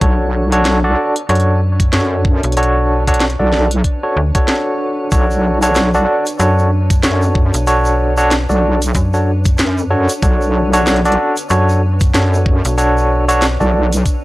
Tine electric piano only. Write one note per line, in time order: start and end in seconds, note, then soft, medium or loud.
0.01 0.48 D4 medium
0.01 0.48 F#4 medium
0.01 0.48 A4 medium
0.01 0.48 C#5 medium
0.52 0.79 D4 loud
0.52 0.78 F#4 medium
0.52 0.78 A4 medium
0.52 0.79 C#5 loud
0.84 1.14 D4 medium
0.84 1.14 F#4 medium
0.84 1.14 A4 medium
0.84 1.14 D5 loud
1.29 1.60 D4 medium
1.29 1.60 F#4 medium
1.29 1.60 A4 medium
1.29 1.60 C#5 loud
1.93 2.54 D4 medium
1.93 2.54 F#4 medium
1.93 2.54 A4 medium
1.93 2.54 C#5 medium
2.57 3.03 D4 medium
2.57 3.03 F#4 medium
2.57 3.03 A4 medium
2.57 3.03 C#5 loud
3.08 3.24 D4 loud
3.08 3.24 F#4 medium
3.08 3.24 A4 medium
3.08 3.24 C#5 loud
3.39 3.69 D4 medium
3.39 3.69 F#4 medium
3.39 3.69 A4 medium
3.39 3.69 D5 medium
4.03 4.20 D4 medium
4.03 4.20 F#4 medium
4.03 4.20 A4 medium
4.03 4.20 C#5 medium
4.35 5.09 D4 medium
4.35 5.09 F#4 medium
4.35 5.09 A4 medium
4.35 5.09 C#5 loud
5.12 5.58 D4 medium
5.12 5.58 F#4 medium
5.12 5.58 A4 medium
5.12 5.58 C#5 medium
5.62 5.89 D4 medium
5.62 5.89 F#4 medium
5.62 5.89 A4 medium
5.62 5.89 C#5 loud
5.94 6.24 D4 medium
5.94 6.24 F#4 medium
5.94 6.24 A4 medium
5.94 6.24 D5 loud
6.39 6.70 D4 medium
6.39 6.70 F#4 medium
6.39 6.70 A4 medium
6.39 6.70 C#5 medium
7.03 7.64 D4 medium
7.03 7.64 F#4 medium
7.03 7.64 A4 medium
7.03 7.64 C#5 medium
7.67 8.13 D4 medium
7.67 8.13 F#4 medium
7.67 8.13 A4 medium
7.67 8.14 C#5 loud
8.18 8.34 D4 loud
8.18 8.34 F#4 medium
8.18 8.34 A4 medium
8.18 8.34 C#5 loud
8.49 8.79 D4 medium
8.49 8.79 F#4 medium
8.49 8.79 A4 medium
8.49 8.79 D5 medium
9.14 9.30 D4 medium
9.14 9.30 F#4 medium
9.14 9.30 A4 medium
9.14 9.30 C#5 medium
9.90 10.12 D4 medium
9.90 10.12 F#4 medium
9.90 10.12 A4 medium
9.90 10.12 C#5 medium
10.23 10.69 D4 medium
10.23 10.69 F#4 medium
10.23 10.69 A4 medium
10.23 10.69 C#5 medium
10.73 11.00 D4 loud
10.73 11.00 F#4 medium
10.73 11.00 A4 medium
10.73 11.00 C#5 loud
11.05 11.35 D4 medium
11.05 11.35 F#4 medium
11.05 11.35 A4 medium
11.05 11.35 D5 loud
11.50 11.81 D4 medium
11.50 11.81 F#4 medium
11.50 11.81 A4 medium
11.50 11.81 C#5 loud
12.14 12.75 D4 medium
12.14 12.75 F#4 medium
12.14 12.75 A4 medium
12.14 12.75 C#5 medium
12.78 13.24 D4 medium
12.78 13.24 F#4 medium
12.78 13.24 A4 medium
12.78 13.24 C#5 loud
13.28 13.45 D4 loud
13.28 13.45 F#4 medium
13.28 13.45 A4 medium
13.28 13.45 C#5 loud
13.60 13.90 D4 medium
13.60 13.90 F#4 medium
13.60 13.90 A4 medium
13.60 13.90 D5 medium